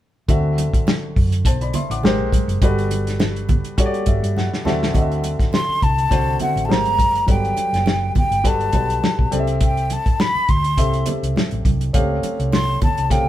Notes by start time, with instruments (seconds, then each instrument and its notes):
0.28 fingered electric bass D2, grand piano D3 C4 F#4 E5, kick, closed hi-hat, muted conga
0.58 closed hi-hat, muted conga
0.74 muted fingered electric bass stroke, kick, closed hi-hat
0.87 snare, high conga
1.16 fingered electric bass F#2, kick, open hi-hat
1.32 closed hi-hat
1.45 fingered electric bass B1, grand piano C5 A5, kick, closed hi-hat
1.61 grand piano D5 B5, closed hi-hat
1.74 grand piano E5 C6, closed hi-hat, muted conga, low conga
1.90 fingered electric bass A1, grand piano F#5 D6, closed hi-hat
2.03 fingered electric bass G#1, grand piano G#3 G4 A#4 C5, snare, high conga
2.19 fingered electric bass A#1
2.33 kick, closed hi-hat, high conga
2.48 fingered electric bass F#1, closed hi-hat
2.62 fingered electric bass G1, grand piano G3 F#4 A4 B4, kick, closed hi-hat, muted conga
2.78 closed hi-hat
2.91 closed hi-hat, muted conga
3.07 snare, closed hi-hat
3.20 snare, high conga
3.36 closed hi-hat
3.49 kick, closed hi-hat, low conga
3.65 closed hi-hat
3.78 grand piano G3 F#4 A4 C#5, kick, closed hi-hat, muted conga
3.86 grand piano D5
3.94 closed hi-hat
4.06 fingered electric bass G1, grand piano E5, kick, closed hi-hat, muted conga
4.23 fingered electric bass G2, closed hi-hat
4.36 grand piano F#5, snare, high conga
4.54 snare
4.65 fingered electric bass D2, grand piano D3 C4 F#4 E5 A5, snare, high conga
4.83 snare
4.94 fingered electric bass D2, grand piano D3 C4 F#4 D#5, kick, closed hi-hat, muted conga
5.02 grand piano E5
5.12 closed hi-hat
5.24 closed hi-hat, muted conga
5.39 muted fingered electric bass stroke, kick, snare, closed hi-hat
5.53 flute C6, snare, high conga
5.68 muted fingered electric bass stroke
5.82 fingered electric bass C2, flute A5, kick, closed hi-hat
5.98 closed hi-hat
6.10 fingered electric bass C2, grand piano D3 C4 F#4 C5, kick, snare, closed hi-hat, muted conga
6.39 grand piano D3 C4 F#4 E5, flute F#5, closed hi-hat, muted conga, low conga
6.56 fingered electric bass A1, closed hi-hat
6.65 grand piano G#3 G4, flute A5
6.69 fingered electric bass G#1, grand piano A#4 C5, flute A#5, snare, high conga
6.85 fingered electric bass G1, closed hi-hat
6.99 fingered electric bass F#1, kick, closed hi-hat, high conga
7.15 closed hi-hat
7.26 fingered electric bass G1, grand piano F#3 G3 A4 B4, flute G5, kick, closed hi-hat, muted conga
7.45 closed hi-hat
7.57 closed hi-hat, muted conga
7.73 fingered electric bass F#1, snare, closed hi-hat
7.86 snare, high conga
8.15 flute G5, kick, closed hi-hat, low conga
8.31 fingered electric bass G1, closed hi-hat
8.44 grand piano G3 F#4 A4 B4, flute A5, kick, snare, closed hi-hat, muted conga
8.61 closed hi-hat
8.73 fingered electric bass B1, grand piano G3 F#4 A4 B4, kick, closed hi-hat, muted conga
8.90 closed hi-hat
9.03 snare, high conga
9.19 fingered electric bass B1, kick
9.31 fingered electric bass C2, grand piano C4 G4 A4 D5, closed hi-hat, high conga
9.39 grand piano E5
9.47 closed hi-hat
9.61 flute G5, kick, closed hi-hat, muted conga
9.77 closed hi-hat
9.90 flute A5, closed hi-hat, muted conga
10.06 muted fingered electric bass stroke, kick, closed hi-hat
10.20 flute B5, snare, high conga
10.35 muted fingered electric bass stroke
10.48 fingered electric bass D2, flute C6, kick, closed hi-hat
10.64 closed hi-hat
10.77 fingered electric bass C2, grand piano C4 G4 A4 E5, kick, closed hi-hat
10.93 closed hi-hat
11.06 grand piano C4 G4 A4 E5, closed hi-hat, muted conga, low conga
11.23 fingered electric bass C2, closed hi-hat
11.36 snare, high conga
11.51 fingered electric bass A1, closed hi-hat
11.65 fingered electric bass C2, kick, closed hi-hat, high conga
11.81 closed hi-hat
11.93 fingered electric bass C#2, grand piano A3 C4 C#4 G4 F5, kick, closed hi-hat, muted conga
12.23 muted fingered electric bass stroke, closed hi-hat, muted conga
12.39 fingered electric bass C2, closed hi-hat
12.52 flute C6, snare, high conga
12.82 flute A5, kick, closed hi-hat, low conga
12.98 fingered electric bass C2, closed hi-hat
13.10 grand piano C#3 A3 C4 G4 F5, flute G5, kick, snare, closed hi-hat